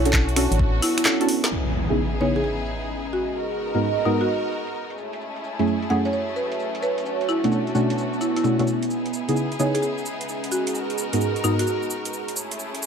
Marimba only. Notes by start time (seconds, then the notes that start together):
Already playing: E4
0.82 E4
0.98 E4
1.06 E4
1.21 E4
2.21 C#5
2.36 G#4
2.44 G#4
3.13 F#4
4.05 D#4
4.21 F#4
5.90 F#5
6.05 C#5
6.13 C#5
6.36 B4
6.83 B4
7.29 E4
8.21 E4
8.36 E4
8.44 E4
8.59 E4
9.60 C#5
9.75 G#4
9.82 G#4
10.52 F#4
11.44 D#4
11.59 F#4